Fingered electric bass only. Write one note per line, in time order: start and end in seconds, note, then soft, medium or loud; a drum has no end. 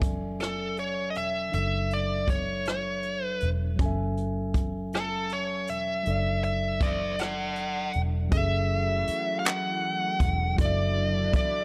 0.00 1.16 F#1 medium
1.16 1.50 E1 medium
1.54 3.38 F#1 medium
3.43 3.76 E1 medium
3.80 5.69 F#1 medium
5.69 6.03 E1 medium
6.07 7.91 F#1 medium
7.96 8.29 E1 medium
8.32 9.04 F#1 loud
9.09 muted fingered electric bass stroke soft
10.21 10.55 E1 medium
10.59 11.30 F#1 loud
11.34 muted fingered electric bass stroke soft